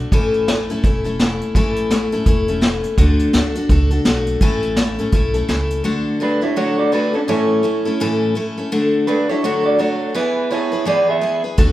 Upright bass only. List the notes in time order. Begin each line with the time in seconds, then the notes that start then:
0.12 A1
0.84 E1
1.55 A1
2.26 E1
2.98 D2
3.34 D2
3.69 C#2
4.06 B1
4.41 A1
5.13 B1
5.49 C#2
11.58 D2